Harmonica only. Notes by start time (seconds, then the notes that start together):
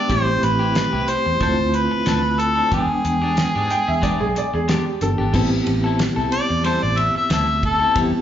Already playing: D5
0.11 C5
0.44 B4
1.10 C5
1.43 C5
1.75 B4
2.40 A4
2.74 G#4
6.33 D5
6.65 C5
6.83 D5
6.98 E5
7.17 E5
7.32 E5
7.65 A4